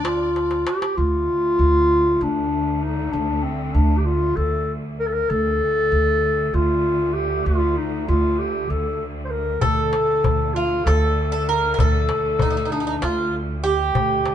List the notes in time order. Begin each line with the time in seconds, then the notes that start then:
Already playing: D2 D4 D5
0.04 F4, darbuka tek
0.36 darbuka tek
0.51 darbuka ka
0.66 G4, darbuka tek
0.82 darbuka ka
0.97 D2 F4
1.59 D2
2.21 D2 D4
2.83 D#4
3.12 D2 D4
3.43 C4
3.74 D2 D4
3.98 G4
4.05 F4
4.36 D2 A4
4.99 A#4
5.06 A4
5.13 A#4
5.29 D2 A4
5.92 D2
6.54 D2 F4
7.13 G4
7.45 D2 F4
7.77 D#4
8.07 D2 F4
8.39 G4
8.70 D2 A4
9.24 C5
9.30 A#4
9.61 D2 A4, darbuka dum
9.93 darbuka tek
10.24 D2, darbuka dum
10.54 F4
10.84 D2 A4, darbuka tek
11.19 darbuka ka
11.32 A4
11.48 A#4
11.74 A#4
11.79 D2 A4, darbuka dum
12.09 darbuka tek
12.39 D2 D#4, darbuka dum
12.50 D#4
12.57 D#4
12.65 D#4
12.71 D4 D#4
12.80 D#4
12.87 D#4
13.02 D2 F4, darbuka tek
13.33 darbuka ka
13.64 G4
13.94 D2, darbuka dum
14.26 darbuka tek